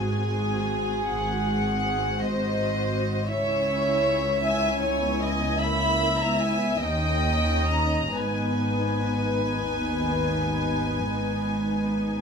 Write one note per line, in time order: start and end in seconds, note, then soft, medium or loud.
0.00 0.95 G#1 soft
0.00 0.95 G#2 soft
0.00 0.30 C4 soft
0.00 0.30 F#4 soft
0.00 2.23 G#4 soft
0.00 1.09 G#5 medium
0.32 1.45 C4 soft
0.32 1.45 F#4 soft
1.08 2.09 G#1 soft
1.08 2.09 G#2 soft
1.08 2.19 F#5 medium
1.48 2.56 C4 soft
1.48 2.56 F#4 soft
2.21 3.18 G#1 soft
2.21 3.18 G#2 medium
2.21 3.29 C5 medium
2.21 3.31 D#5 medium
2.58 3.30 C4 soft
2.58 3.30 F#4 soft
3.30 6.78 C#2 medium
3.30 6.79 C#2 medium
3.30 4.42 C#4 medium
3.30 4.42 E4 soft
3.30 4.43 C#5 medium
3.30 4.43 E5 medium
4.45 5.02 C#4 soft
4.45 5.59 E4 medium
4.45 4.83 E5 medium
4.45 5.62 G#5 medium
4.83 5.22 C#5 medium
5.03 5.60 B3 soft
5.22 5.61 D#5 medium
5.61 6.20 A#3 medium
5.61 6.80 E4 medium
5.61 6.82 E5 medium
5.61 6.20 B5 medium
6.21 6.83 B3 soft
6.21 6.41 A#5 medium
6.39 6.82 G#5 medium
6.81 8.13 D#2 medium
6.81 8.16 C#4 soft
6.81 8.14 D#4 soft
6.81 8.15 D#5 medium
6.81 7.69 G5 medium
7.69 8.14 A#5 medium
8.14 12.21 G#1 soft
8.14 9.48 G#2 soft
8.14 12.21 B3 soft
8.14 12.21 D#4 soft
8.14 12.21 B4 soft
8.14 12.21 G#5 medium
9.61 10.99 D#2 soft
11.02 12.21 G#2 soft